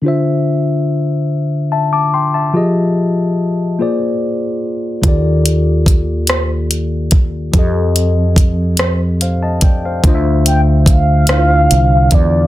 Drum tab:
HH |------|------|xxxxxx|xxxxxx|
SD |------|------|---r--|---r--|
BD |------|------|o-o--o|o-o--o|

HH |xxxxxx|
SD |---r--|
BD |o-o--o|